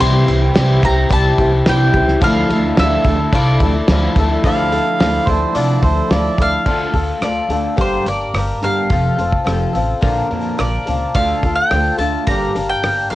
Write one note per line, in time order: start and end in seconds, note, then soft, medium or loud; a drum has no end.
0.00 0.21 C2 medium
0.00 0.28 C3 medium
0.00 0.42 C3 medium
0.00 0.55 E3 medium
0.00 0.28 G3 medium
0.00 0.13 G3 loud
0.00 2.20 C4 medium
0.00 0.26 C4 medium
0.00 2.20 E4 medium
0.00 0.26 E4 medium
0.00 0.14 E4 loud
0.00 2.20 G4 medium
0.00 0.24 G4 medium
0.00 0.12 G4 loud
0.00 2.20 C5 medium
0.00 0.80 C6 loud
0.00 crash medium
0.13 0.40 G3 medium
0.13 0.40 E4 medium
0.13 0.39 G4 medium
0.25 0.49 C2 medium
0.25 0.54 C4 soft
0.25 0.55 E4 medium
0.25 0.55 G4 medium
0.25 crash medium
0.40 0.54 G3 medium
0.40 0.56 E4 medium
0.40 0.55 G4 medium
0.54 0.77 C2 loud
0.54 1.11 C3 loud
0.54 0.83 E3 medium
0.54 0.83 G3 medium
0.54 0.84 G3 loud
0.54 0.83 C4 medium
0.54 0.83 E4 medium
0.54 0.85 E4 loud
0.54 0.84 G4 loud
0.54 0.81 G4 medium
0.54 snare loud
0.54 crash medium
0.82 1.04 C2 medium
0.82 0.98 E3 medium
0.82 0.96 G3 medium
0.82 1.09 C4 soft
0.82 1.10 E4 soft
0.82 0.97 E4 medium
0.82 1.11 G4 medium
0.82 0.96 G4 medium
0.82 1.10 A#5 loud
0.82 kick medium
0.82 crash medium
0.97 muted clean electric guitar stroke soft
1.09 1.31 C2 medium
1.09 1.38 C3 medium
1.09 1.38 G3 medium
1.09 1.39 C4 medium
1.09 1.39 E4 medium
1.09 1.38 G4 medium
1.09 1.69 A5 loud
1.09 kick loud
1.09 crash medium
1.38 1.59 C2 medium
1.38 1.54 E3 medium
1.38 1.53 G3 medium
1.38 1.66 C4 soft
1.38 1.53 E4 medium
1.38 1.67 E4 medium
1.38 1.67 G4 medium
1.38 1.52 G4 medium
1.38 kick medium
1.38 crash medium
1.53 muted clean electric guitar stroke medium
1.66 1.88 C2 medium
1.66 2.20 C3 medium
1.66 1.94 E3 medium
1.66 1.94 G3 medium
1.66 1.94 G3 loud
1.66 1.95 C4 medium
1.66 1.95 E4 loud
1.66 1.94 E4 medium
1.66 1.95 G4 loud
1.66 1.92 G4 medium
1.66 2.20 G5 medium
1.66 snare loud
1.66 crash medium
1.93 2.15 C#2 medium
1.93 2.22 E3 medium
1.93 2.09 G3 medium
1.93 2.21 C4 soft
1.93 2.20 E4 soft
1.93 2.08 E4 medium
1.93 2.21 G4 medium
1.93 2.07 G4 medium
1.93 kick medium
1.93 crash medium
2.08 2.21 G3 medium
2.08 2.23 E4 medium
2.08 2.20 G4 medium
2.08 snare soft
2.21 2.42 D2 loud
2.21 2.49 D3 medium
2.21 2.64 D3 medium
2.21 2.49 F3 medium
2.21 2.64 F3 medium
2.21 2.36 A3 loud
2.21 2.49 D4 medium
2.21 4.41 D4 medium
2.21 2.35 D4 loud
2.21 2.49 E4 medium
2.21 2.34 E4 loud
2.21 4.41 A4 medium
2.21 2.48 A4 medium
2.21 2.74 F5 loud
2.21 kick loud
2.21 crash medium
2.36 2.65 A3 medium
2.36 2.64 D4 medium
2.36 2.62 E4 medium
2.49 2.70 D2 loud
2.49 2.77 D4 soft
2.49 2.78 E4 soft
2.49 2.77 A4 medium
2.49 crash medium
2.64 2.77 A3 medium
2.64 2.77 D4 medium
2.64 2.77 E4 medium
2.77 2.99 D2 medium
2.77 3.33 D3 medium
2.77 3.05 F3 medium
2.77 3.04 F3 loud
2.77 3.05 A3 loud
2.77 3.06 D4 loud
2.77 3.06 D4 medium
2.77 3.06 E4 loud
2.77 3.35 E5 medium
2.77 snare loud
2.77 crash medium
2.81 3.06 E4 medium
2.81 3.04 A4 medium
3.04 3.25 D2 medium
3.04 3.20 F3 medium
3.04 3.20 A3 medium
3.04 3.19 D4 medium
3.04 3.18 E4 medium
3.04 3.33 E4 soft
3.04 3.33 A4 medium
3.04 kick medium
3.04 crash medium
3.09 3.33 D4 soft
3.20 muted clean electric guitar stroke medium
3.32 3.53 C2 medium
3.32 3.60 D3 medium
3.32 3.61 F3 medium
3.32 3.61 D4 medium
3.32 3.61 E4 medium
3.32 3.61 A4 medium
3.32 4.13 D5 medium
3.32 kick loud
3.32 crash medium
3.60 3.81 D2 medium
3.60 3.75 F3 medium
3.60 3.74 A3 medium
3.60 3.74 D4 medium
3.60 3.90 E4 soft
3.60 3.74 E4 medium
3.60 3.89 A4 medium
3.60 kick medium
3.60 crash medium
3.65 3.90 D4 soft
3.75 muted clean electric guitar stroke soft
3.88 4.08 D2 medium
3.88 4.42 D3 medium
3.88 4.16 F3 medium
3.88 4.17 F3 medium
3.88 4.17 A3 loud
3.88 4.17 D4 medium
3.88 4.17 E4 loud
3.88 snare loud
3.88 crash medium
3.93 4.18 E4 medium
3.93 4.17 A4 medium
4.15 4.36 D2 medium
4.15 4.43 F3 medium
4.15 4.32 A3 medium
4.15 4.31 D4 medium
4.15 4.30 E4 medium
4.15 4.45 A4 medium
4.15 kick medium
4.15 crash medium
4.19 4.44 D4 soft
4.19 4.45 E4 medium
4.31 4.44 A3 medium
4.31 4.43 D4 medium
4.31 4.43 E4 medium
4.44 4.77 D2 medium
4.44 4.72 D3 medium
4.44 5.26 D3 medium
4.44 4.72 F3 medium
4.44 5.27 F3 medium
4.44 5.27 A3 medium
4.44 4.72 D4 medium
4.44 5.27 D4 medium
4.44 4.73 E4 medium
4.44 4.71 A4 medium
4.44 5.29 F5 loud
4.44 kick loud
4.44 open hi-hat medium
4.48 5.27 E4 medium
4.72 5.01 D4 soft
4.72 5.00 E4 soft
4.72 4.99 A4 medium
4.72 open hi-hat medium
5.00 5.17 D2 medium
5.00 5.27 F3 medium
5.00 5.28 D4 medium
5.00 5.28 E4 medium
5.00 5.27 A4 medium
5.00 snare loud
5.00 open hi-hat medium
5.27 5.44 D2 medium
5.27 6.65 D3 medium
5.27 6.66 F3 medium
5.27 6.66 A3 medium
5.27 6.65 D4 medium
5.27 5.54 D4 soft
5.27 6.65 E4 medium
5.27 5.55 E4 medium
5.27 5.55 A4 medium
5.27 5.57 C5 medium
5.27 kick medium
5.27 open hi-hat medium
5.55 5.72 C3 medium
5.55 5.82 D3 medium
5.55 5.83 F3 medium
5.55 5.83 D4 medium
5.55 5.83 E4 medium
5.55 5.82 A4 medium
5.55 5.82 D5 medium
5.55 open hi-hat medium
5.83 5.99 D2 medium
5.83 6.11 D4 soft
5.83 6.11 E4 soft
5.83 6.11 A4 medium
5.83 6.12 C5 medium
5.83 kick medium
5.83 open hi-hat soft
6.10 6.27 D2 medium
6.10 6.39 F3 medium
6.10 6.39 D4 medium
6.10 6.39 E4 medium
6.10 6.38 A4 medium
6.10 6.51 D5 medium
6.10 snare loud
6.10 open hi-hat medium
6.38 6.55 D2 medium
6.38 6.66 D4 medium
6.38 6.67 E4 medium
6.38 6.66 A4 medium
6.38 7.26 F5 loud
6.38 kick medium
6.38 open hi-hat soft
6.66 6.83 D2 medium
6.66 6.94 D3 medium
6.66 6.93 D3 medium
6.66 6.94 F3 medium
6.66 6.93 A3 medium
6.66 6.94 D4 medium
6.66 6.93 D4 medium
6.66 6.94 F4 medium
6.66 6.93 A4 medium
6.66 kick loud
6.66 crash medium
6.93 7.11 D2 medium
6.93 7.20 D3 soft
6.93 7.20 A3 medium
6.93 7.22 D4 soft
6.93 7.23 F4 soft
6.93 7.22 A4 soft
6.93 kick medium
6.93 open hi-hat soft
7.21 7.38 D2 medium
7.21 7.47 D3 medium
7.21 7.50 F3 medium
7.21 7.47 A3 medium
7.21 7.50 D4 medium
7.21 7.50 F4 medium
7.21 7.49 A4 medium
7.21 7.74 D5 medium
7.21 cross-stick medium
7.21 open hi-hat medium
7.49 7.66 D2 medium
7.49 7.76 D3 medium
7.49 7.77 A3 medium
7.49 7.77 D4 medium
7.49 7.78 F4 soft
7.49 7.78 A4 soft
7.49 open hi-hat soft
7.53 7.77 D4 soft
7.76 7.95 G1 medium
7.76 8.05 G2 medium
7.76 8.04 G2 medium
7.76 8.05 D3 medium
7.76 8.04 D3 medium
7.76 8.06 G3 medium
7.76 8.05 G3 medium
7.76 8.06 A#3 medium
7.76 8.06 D4 medium
7.76 8.05 A#4 medium
7.76 kick medium
7.76 open hi-hat medium
7.81 8.06 C5 medium
8.06 8.23 G1 medium
8.06 8.31 G2 medium
8.06 8.31 D3 medium
8.06 8.33 G3 soft
8.06 8.34 A#3 soft
8.06 8.35 D4 soft
8.06 8.34 A#4 soft
8.06 8.59 D5 medium
8.06 open hi-hat soft
8.34 8.51 G1 medium
8.34 8.60 G2 medium
8.34 8.59 D3 medium
8.34 8.62 G3 soft
8.34 8.63 A#3 soft
8.34 8.62 D4 soft
8.34 8.61 A#4 medium
8.34 cross-stick medium
8.34 open hi-hat medium
8.62 8.80 G1 medium
8.62 8.88 G2 medium
8.62 8.89 D3 medium
8.62 8.89 G3 medium
8.62 8.91 G3 soft
8.62 8.91 A#3 soft
8.62 8.91 D4 soft
8.62 8.90 A#4 soft
8.62 10.27 F5 medium
8.62 open hi-hat soft
8.90 9.07 F1 medium
8.90 9.17 F2 medium
8.90 9.17 C3 medium
8.90 9.17 F3 medium
8.90 9.19 F3 medium
8.90 9.19 C4 medium
8.90 9.18 F4 medium
8.90 9.17 A4 medium
8.90 kick loud
8.90 open hi-hat medium
9.18 9.36 F1 medium
9.18 9.43 F2 medium
9.18 9.44 C3 medium
9.18 9.44 C4 soft
9.18 9.46 F4 soft
9.18 9.46 A4 soft
9.18 open hi-hat soft
9.32 kick medium
9.45 9.64 F1 medium
9.45 9.72 F2 medium
9.45 9.73 C3 medium
9.45 9.73 F3 medium
9.45 9.74 C4 medium
9.45 9.74 F4 medium
9.45 9.72 A4 medium
9.45 cross-stick medium
9.45 open hi-hat medium
9.73 9.92 A1 medium
9.73 10.00 F2 medium
9.73 10.00 C3 medium
9.73 10.02 C4 soft
9.73 10.02 F4 soft
9.73 10.02 A4 soft
9.73 open hi-hat soft
10.01 10.20 A#1 medium
10.01 10.30 A#2 medium
10.01 10.28 A#2 medium
10.01 10.30 D3 medium
10.01 10.29 D3 medium
10.01 10.30 F3 medium
10.01 10.30 A#3 medium
10.01 10.29 A#3 medium
10.01 10.30 D4 medium
10.01 10.29 A#4 medium
10.01 kick medium
10.01 open hi-hat medium
10.30 10.48 F2 medium
10.30 10.57 A#2 medium
10.30 10.57 D3 medium
10.30 10.56 F3 soft
10.30 10.57 A#3 medium
10.30 10.58 D4 soft
10.30 10.58 A#4 medium
10.30 open hi-hat soft
10.57 10.76 A#1 medium
10.57 10.84 A#2 medium
10.57 10.84 D3 medium
10.57 10.86 F3 medium
10.57 10.86 A#3 medium
10.57 10.86 D4 medium
10.57 10.85 A#4 medium
10.57 11.17 D5 medium
10.57 cross-stick medium
10.57 open hi-hat medium
10.86 11.04 C#2 medium
10.86 11.12 A#2 medium
10.86 11.12 D3 medium
10.86 11.14 F3 soft
10.86 11.15 A#3 soft
10.86 11.14 D4 soft
10.86 11.14 A#4 soft
10.86 open hi-hat soft
11.15 11.32 D2 medium
11.15 11.43 D3 medium
11.15 11.41 D3 medium
11.15 11.43 F3 medium
11.15 11.42 A3 medium
11.15 11.43 D4 medium
11.15 11.42 D4 medium
11.15 11.44 F4 medium
11.15 11.43 A4 medium
11.15 11.55 F5 medium
11.15 kick medium
11.15 open hi-hat medium
11.43 11.60 D2 medium
11.43 11.68 D3 medium
11.43 11.69 A3 medium
11.43 11.72 D4 soft
11.43 11.72 F4 soft
11.43 11.71 A4 soft
11.43 kick medium
11.43 open hi-hat soft
11.56 11.95 G5 medium
11.71 11.88 D2 medium
11.71 11.97 D3 medium
11.71 11.99 F3 soft
11.71 11.97 A3 medium
11.71 12.00 D4 medium
11.71 11.99 F4 medium
11.71 cross-stick medium
11.71 open hi-hat medium
11.75 11.97 A4 medium
11.98 12.16 D2 medium
11.98 12.26 D3 medium
11.98 12.26 A3 medium
11.98 12.26 D4 medium
11.98 12.28 D4 soft
11.98 12.27 F4 soft
11.98 12.26 A4 medium
11.98 12.26 A5 medium
11.98 open hi-hat soft
12.27 12.44 G1 medium
12.27 12.53 G2 medium
12.27 12.55 G2 medium
12.27 12.54 D3 medium
12.27 12.56 D3 medium
12.27 12.54 G3 medium
12.27 12.56 G3 medium
12.27 12.56 A#3 medium
12.27 12.55 D4 medium
12.27 12.69 A#5 medium
12.27 kick medium
12.27 open hi-hat medium
12.31 12.54 A#4 medium
12.55 12.72 G1 medium
12.55 12.81 G2 medium
12.55 12.81 D3 medium
12.55 12.82 G3 soft
12.55 12.83 A#3 soft
12.55 12.84 D4 soft
12.55 12.83 A#4 soft
12.55 open hi-hat soft
12.69 13.10 G5 medium
12.83 13.00 G1 medium
12.83 13.08 G2 medium
12.83 13.08 D3 medium
12.83 13.11 G3 soft
12.83 13.12 A#3 medium
12.83 13.12 D4 medium
12.83 13.12 A#4 medium
12.83 cross-stick medium
12.83 open hi-hat medium
13.10 13.15 E1 medium
13.10 13.15 F5 medium